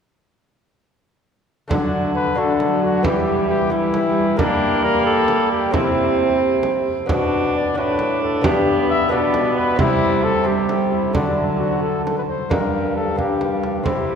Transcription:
1.68 bassoon D3, lute D3 A3 D4 F#4, viola F#3, cornet D4, frame drum
2.15 cornet B4
2.35 viola F#3, lute A3 D4 F#4, cornet A4
2.60 frame drum
2.83 cornet F#4
3.03 bassoon E3, lute E3 B3 G4, viola G3, cornet G4, frame drum
3.49 cornet G4
3.70 viola G3, lute B3 G4, cornet E4
3.94 frame drum
4.06 viola G3
4.37 bassoon G3, lute G3 A#3 G4, viola A#3, cornet D4, frame drum
4.84 cornet A#4
5.06 cornet A4
5.28 frame drum
5.51 cornet G4
5.71 bassoon C3, lute C3 C4 E4, viola C4, cornet E4, frame drum
6.63 frame drum
7.06 bassoon B2, lute B2 B3 D4, frame drum
7.10 viola D4, cornet F#4
7.56 cornet D5
7.74 bassoon A2, lute A2 B3 D4, viola D4, cornet B4
7.99 frame drum
8.22 cornet A4
8.41 bassoon G2, lute G2 B3 D4 G4, cornet G4, frame drum
8.45 viola B3
8.89 cornet E5
9.09 bassoon B2, lute B2 B3 D4 G4, cornet D5
9.13 viola B3
9.34 frame drum
9.56 cornet B4
9.76 lute C3 C4 G4, bassoon C3, frame drum
9.80 viola G3, cornet E4
10.24 cornet A4
10.44 viola G3, lute C4 G4, cornet G4
10.69 frame drum
10.92 cornet E4
11.13 bassoon D3, lute D3 A3 D4, viola F#3, cornet D4, frame drum
11.59 cornet F#4
11.82 cornet A4
12.05 cornet A4, frame drum
12.18 cornet B4
12.28 cornet C5
12.50 bassoon G2, lute G2 A#3 D4, viola G3, cornet A#4, frame drum
12.96 cornet A4
13.16 viola G3, lute A#3 D4, cornet G4, frame drum
13.41 frame drum
13.64 cornet D4, frame drum
13.83 lute C3 C4 E4, bassoon C3, viola G3, cornet E4, frame drum

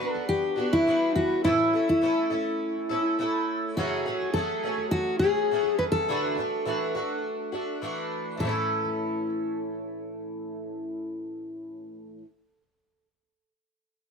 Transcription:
Already playing: steel-string acoustic guitar B4
0.00 twelve-string acoustic guitar B3 D4 F#4
0.13 steel-string acoustic guitar A4
0.29 steel-string acoustic guitar G4
0.56 twelve-string acoustic guitar B3 D4 F#4
0.73 steel-string acoustic guitar E4
0.86 twelve-string acoustic guitar G3 B3 D4 F#4
1.15 steel-string acoustic guitar F#4
1.44 twelve-string acoustic guitar A2 E3 A3 C#4 E4 A4, steel-string acoustic guitar E4
1.73 twelve-string acoustic guitar A3 C#4 E4 A4
1.89 steel-string acoustic guitar E4
2.01 twelve-string acoustic guitar A3 C#4 E4 A4
2.30 twelve-string acoustic guitar A3 C#4 E4 A4
2.89 twelve-string acoustic guitar A3 C#4 E4 A4
3.19 twelve-string acoustic guitar A3 C#4 E4 A4
3.77 twelve-string acoustic guitar F#2 C#3 F#3 A3 C#4 G#4, steel-string acoustic guitar F#4
4.06 twelve-string acoustic guitar F#3 A3 C#4 G#4
4.34 twelve-string acoustic guitar F#3 A3 C#4 G#4, steel-string acoustic guitar A4
4.63 twelve-string acoustic guitar F#3 A3 C#4 G#4
4.91 steel-string acoustic guitar F#4
5.19 twelve-string acoustic guitar C#4 G#4, steel-string acoustic guitar G#4
5.23 twelve-string acoustic guitar F#3 A3
5.51 twelve-string acoustic guitar F#3 A3 C#4 G#4
5.79 steel-string acoustic guitar B4
5.92 steel-string acoustic guitar A4
6.08 twelve-string acoustic guitar D3 E3 A3 D4 F#4
6.37 twelve-string acoustic guitar A3 D4 F#4
6.65 twelve-string acoustic guitar E3 A3 D4 F#4
6.95 twelve-string acoustic guitar A3 D4 F#4
7.52 twelve-string acoustic guitar A3 D4 F#4
7.82 twelve-string acoustic guitar E3 A3 D4 F#4
8.37 twelve-string acoustic guitar A2 E3, steel-string acoustic guitar A4
8.43 twelve-string acoustic guitar A3 C#4 E4
8.49 twelve-string acoustic guitar A4

